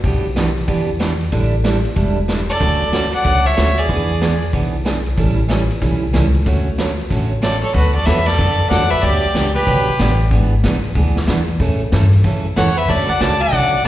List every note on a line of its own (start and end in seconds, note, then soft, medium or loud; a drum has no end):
0.04 0.55 B1 medium
0.04 0.25 B2 medium
0.04 0.25 E3 medium
0.04 0.25 B3 medium
0.04 0.26 D4 medium
0.04 0.26 G4 medium
0.04 kick soft
0.04 open hi-hat medium
0.36 0.47 B2 medium
0.36 0.48 E3 medium
0.36 0.48 B3 medium
0.36 0.48 D4 medium
0.36 0.48 G4 medium
0.36 snare medium
0.36 closed hi-hat medium
0.57 open hi-hat soft
0.67 1.19 E2 medium
0.67 0.89 B2 medium
0.67 0.89 E3 medium
0.67 0.89 B3 medium
0.67 0.89 D4 medium
0.67 0.89 G4 medium
0.67 kick soft
0.67 open hi-hat soft
0.99 1.11 B2 medium
0.99 1.12 E3 medium
0.99 1.12 B3 medium
0.99 1.12 D4 medium
0.99 1.12 G4 medium
0.99 snare medium
0.99 closed hi-hat medium
1.21 open hi-hat soft
1.32 1.84 A1 medium
1.32 1.53 D3 medium
1.32 1.53 G3 medium
1.32 1.53 D4 medium
1.32 1.54 E4 medium
1.32 1.54 A4 medium
1.32 kick soft
1.32 open hi-hat medium
1.64 1.76 D3 medium
1.64 1.76 G3 medium
1.64 1.76 D4 medium
1.64 1.76 E4 medium
1.64 1.76 A4 medium
1.64 snare medium
1.64 closed hi-hat medium
1.85 open hi-hat soft
1.95 2.48 E1 medium
1.95 2.17 D3 medium
1.95 2.17 G3 medium
1.95 2.17 D4 medium
1.95 2.18 E4 medium
1.95 2.18 A4 medium
1.95 kick soft
1.95 open hi-hat soft
2.28 2.40 D3 medium
2.28 2.40 G3 medium
2.28 2.40 D4 medium
2.28 2.40 E4 medium
2.28 2.40 A4 medium
2.28 snare medium
2.28 closed hi-hat medium
2.49 3.09 A4 medium
2.49 3.10 D5 medium
2.49 open hi-hat soft
2.60 3.12 D2 medium
2.60 2.82 D3 medium
2.60 2.82 F#3 medium
2.60 2.82 A3 medium
2.60 2.82 C#4 medium
2.60 2.82 F#4 medium
2.60 kick soft
2.60 open hi-hat soft
2.92 3.04 D3 medium
2.92 3.04 F#3 medium
2.92 3.04 A3 medium
2.92 3.05 C#4 medium
2.92 3.05 F#4 medium
2.92 snare medium
2.92 closed hi-hat medium
3.13 3.48 D5 medium
3.13 3.48 F#5 loud
3.13 open hi-hat soft
3.25 3.52 C#2 medium
3.25 3.46 D3 medium
3.25 3.46 F#3 medium
3.25 3.46 A3 medium
3.25 3.47 C#4 medium
3.25 3.47 F#4 medium
3.25 kick soft
3.25 open hi-hat soft
3.46 3.81 C#5 medium
3.46 3.80 E5 medium
3.56 3.85 D2 medium
3.56 3.68 D3 medium
3.56 3.68 F#3 medium
3.56 3.69 A3 medium
3.56 3.69 C#4 medium
3.56 3.69 F#4 medium
3.56 snare medium
3.56 closed hi-hat medium
3.78 4.42 G#4 medium
3.78 4.42 D5 medium
3.78 open hi-hat soft
3.88 4.41 E2 medium
3.88 4.10 E3 medium
3.88 4.10 B3 medium
3.88 4.10 D4 medium
3.88 4.11 G#4 medium
3.88 kick soft
3.88 open hi-hat soft
4.21 4.32 E3 medium
4.21 4.33 B3 medium
4.21 4.33 D4 medium
4.21 4.33 G#4 medium
4.21 snare medium
4.21 closed hi-hat medium
4.42 open hi-hat soft
4.53 5.05 B1 medium
4.53 4.75 E3 medium
4.53 4.75 B3 medium
4.53 4.75 D4 medium
4.53 4.75 G#4 medium
4.53 kick soft
4.53 open hi-hat soft
4.85 4.97 E3 medium
4.85 4.97 B3 medium
4.85 4.97 D4 medium
4.85 4.97 G#4 medium
4.85 snare medium
4.85 closed hi-hat medium
5.06 open hi-hat soft
5.17 5.69 A1 medium
5.17 5.39 E3 medium
5.17 5.39 G3 medium
5.17 5.39 C#4 medium
5.17 5.39 E4 medium
5.17 5.39 A4 medium
5.17 kick soft
5.17 open hi-hat medium
5.48 5.61 E3 medium
5.48 5.61 G3 medium
5.48 5.61 C#4 medium
5.48 5.61 E4 medium
5.48 5.61 A4 medium
5.48 snare medium
5.48 closed hi-hat medium
5.71 open hi-hat soft
5.82 6.09 B1 medium
5.82 6.03 E3 medium
5.82 6.03 G3 medium
5.82 6.03 C#4 medium
5.82 6.03 E4 medium
5.82 6.04 A4 medium
5.82 kick soft
5.82 open hi-hat soft
6.13 6.42 C#2 medium
6.13 6.25 E3 medium
6.13 6.25 G3 medium
6.13 6.26 C#4 medium
6.13 6.26 E4 medium
6.13 6.26 A4 medium
6.13 snare medium
6.13 closed hi-hat medium
6.34 open hi-hat soft
6.46 6.98 D2 loud
6.46 6.67 D3 medium
6.46 6.67 F#3 medium
6.46 6.68 A3 medium
6.46 6.68 C#4 medium
6.46 6.68 F#4 medium
6.46 kick soft
6.46 open hi-hat soft
6.78 6.90 D3 medium
6.78 6.90 F#3 medium
6.78 6.90 A3 medium
6.78 6.90 C#4 medium
6.78 6.90 F#4 medium
6.78 snare medium
6.78 closed hi-hat medium
6.99 open hi-hat soft
7.10 7.62 A1 medium
7.10 7.32 D3 medium
7.10 7.32 F#3 soft
7.10 7.32 A3 medium
7.10 7.32 C#4 medium
7.10 7.33 F#4 medium
7.10 kick soft
7.10 open hi-hat soft
7.42 7.54 D3 medium
7.42 7.54 F#3 medium
7.42 7.54 A3 medium
7.42 7.54 C#4 medium
7.42 7.55 F#4 medium
7.42 7.62 A4 medium
7.42 7.62 D5 medium
7.42 snare medium
7.42 closed hi-hat medium
7.63 7.74 A4 medium
7.63 7.74 C#5 medium
7.63 open hi-hat soft
7.74 8.06 D2 medium
7.74 7.96 D3 medium
7.74 7.96 F#3 medium
7.74 7.96 B3 medium
7.74 7.94 F#4 medium
7.74 7.96 F#4 medium
7.74 7.96 A4 medium
7.74 7.94 B4 medium
7.74 kick soft
7.74 open hi-hat medium
7.94 8.08 A4 medium
7.94 8.07 D5 medium
8.06 8.38 E2 medium
8.06 8.18 D3 medium
8.06 8.18 F#3 medium
8.06 8.18 B3 medium
8.06 8.18 F#4 medium
8.06 8.19 A4 medium
8.06 8.29 B4 medium
8.06 8.28 E5 medium
8.06 snare medium
8.06 closed hi-hat medium
8.26 8.70 A4 medium
8.26 8.69 D5 medium
8.26 snare soft
8.38 8.70 F#2 medium
8.38 8.60 D3 medium
8.38 8.60 F#3 medium
8.38 8.60 B3 medium
8.38 8.60 F#4 medium
8.38 8.60 A4 medium
8.38 kick soft
8.38 open hi-hat soft
8.70 8.90 E2 loud
8.70 8.82 D3 medium
8.70 8.82 F#3 medium
8.70 8.83 B3 medium
8.70 8.83 F#4 medium
8.70 8.83 A4 medium
8.70 8.92 D5 medium
8.70 8.92 F#5 loud
8.70 snare medium
8.70 closed hi-hat medium
8.90 9.04 B4 medium
8.90 9.03 E5 loud
8.90 muted upright bass stroke soft
8.90 open hi-hat soft
9.01 9.34 D2 medium
9.01 9.24 D3 medium
9.01 9.24 F#3 medium
9.01 9.25 B3 medium
9.01 9.25 D4 medium
9.01 9.55 G4 medium
9.01 9.25 G4 medium
9.01 9.54 D5 loud
9.01 kick soft
9.01 open hi-hat medium
9.34 9.66 C#2 loud
9.34 9.46 D3 medium
9.34 9.47 F#3 medium
9.34 9.47 B3 medium
9.34 9.47 D4 medium
9.34 9.47 G4 medium
9.34 snare medium
9.34 closed hi-hat medium
9.55 10.16 G4 medium
9.55 10.16 B4 medium
9.55 open hi-hat soft
9.67 9.86 B1 medium
9.67 9.88 D3 medium
9.67 9.89 F#3 medium
9.67 9.89 B3 medium
9.67 9.89 D4 medium
9.67 9.89 G4 medium
9.67 kick soft
9.67 open hi-hat medium
9.88 muted upright bass stroke soft
9.99 10.31 A1 loud
9.99 10.11 D3 medium
9.99 10.11 F#3 medium
9.99 10.11 B3 medium
9.99 10.12 D4 medium
9.99 10.12 G4 medium
9.99 snare medium
9.99 closed hi-hat medium
10.20 open hi-hat soft
10.31 10.63 G#1 medium
10.31 10.53 E3 medium
10.31 10.53 B3 medium
10.31 10.53 D4 medium
10.31 10.53 G#4 medium
10.31 kick soft
10.31 open hi-hat medium
10.63 10.95 B1 medium
10.63 10.75 E3 medium
10.63 10.76 B3 medium
10.63 10.76 D4 medium
10.63 10.76 G#4 medium
10.63 snare medium
10.63 closed hi-hat medium
10.84 open hi-hat soft
10.95 11.27 D2 medium
10.95 11.17 E3 medium
10.95 11.17 B3 medium
10.95 11.17 D4 medium
10.95 11.18 G#4 medium
10.95 kick soft
10.95 open hi-hat soft
11.16 snare medium
11.27 11.59 E2 medium
11.27 11.39 E3 medium
11.27 11.39 B3 medium
11.27 11.40 D4 medium
11.27 11.40 G#4 medium
11.27 snare medium
11.27 closed hi-hat medium
11.48 open hi-hat soft
11.60 11.91 A2 medium
11.60 11.81 C#3 medium
11.60 11.81 E3 medium
11.60 11.81 A3 medium
11.60 11.82 C#4 medium
11.60 11.82 A4 medium
11.60 kick soft
11.60 open hi-hat medium
11.92 12.23 G2 medium
11.92 12.04 C#3 medium
11.92 12.04 E3 medium
11.92 12.04 A3 medium
11.92 12.04 C#4 medium
11.92 12.04 A4 medium
11.92 snare medium
11.92 closed hi-hat medium
12.13 open hi-hat soft
12.24 12.56 F#2 medium
12.24 12.46 C#3 medium
12.24 12.46 E3 medium
12.24 12.46 A3 medium
12.24 12.46 C#4 medium
12.24 12.46 A4 medium
12.24 kick soft
12.24 open hi-hat soft
12.56 12.88 E2 medium
12.56 12.68 C#3 medium
12.56 12.68 E3 medium
12.56 12.68 A3 medium
12.56 12.68 C#4 medium
12.56 12.69 A4 medium
12.56 12.79 C#5 medium
12.56 12.79 F#5 loud
12.56 snare medium
12.56 closed hi-hat medium
12.77 12.91 B4 medium
12.77 12.91 E5 medium
12.88 13.08 D2 medium
12.88 13.10 D3 medium
12.88 13.10 F#3 medium
12.88 13.10 A3 medium
12.88 13.10 C#4 medium
12.88 13.11 F#4 medium
12.88 13.11 A4 medium
12.88 13.11 D5 loud
12.88 kick soft
12.88 open hi-hat medium
13.09 13.21 D5 medium
13.09 13.23 F#5 loud
13.09 muted upright bass stroke soft
13.20 13.52 C#2 medium
13.20 13.32 D3 medium
13.20 13.32 F#3 medium
13.20 13.33 A3 medium
13.20 13.33 C#4 medium
13.20 13.33 F#4 medium
13.20 13.41 D5 medium
13.20 13.43 A5 loud
13.20 snare medium
13.20 closed hi-hat medium
13.41 13.84 D5 loud
13.41 13.84 F#5 loud
13.52 13.84 B1 medium
13.52 13.74 D3 medium
13.52 13.74 F#3 medium
13.52 13.74 A3 medium
13.52 13.74 C#4 medium
13.52 13.74 F#4 medium
13.52 kick soft
13.52 open hi-hat medium
13.84 13.88 D3 medium
13.84 13.88 F#3 medium
13.84 13.88 D5 medium
13.84 snare medium
13.84 closed hi-hat medium